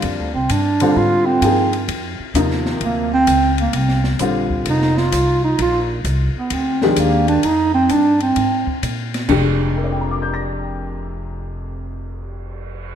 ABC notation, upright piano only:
X:1
M:4/4
L:1/8
Q:"Swing" 1/4=130
K:Fdor
V:1 name="Upright piano"
z8 | z8 | z8 | z8 |
z8 | z2 [Bdgbd'g'b']6- | [Bdgbd'g'b']8 |]
V:2 name="Upright piano"
[D,G,CF] z2 [D,G,CF]3 [F,B,EA] z | z2 [C,F,B,E]3 z3 | z2 [D,G,CF]3 z3 | z4 z [E,A,DG]3 |
z8 | [F,,C,A,DG]8- | [F,,C,A,DG]8 |]